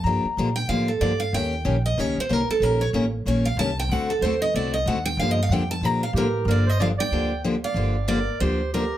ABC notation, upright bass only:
X:1
M:4/4
L:1/8
Q:"Swing" 1/4=187
K:Gm
V:1 name="Upright bass" clef=bass
G,, z B,,2 A,,2 G,,2 | E,,2 B,,,2 _D,, z C,, z | B,,,2 A,,,2 B,,,2 C,,2 | D,,2 E,,2 C,,2 E,,2 |
G,,2 F,,2 B,,2 A,,2 | G,,,4 D,,4 | G,,,4 D,,4 |]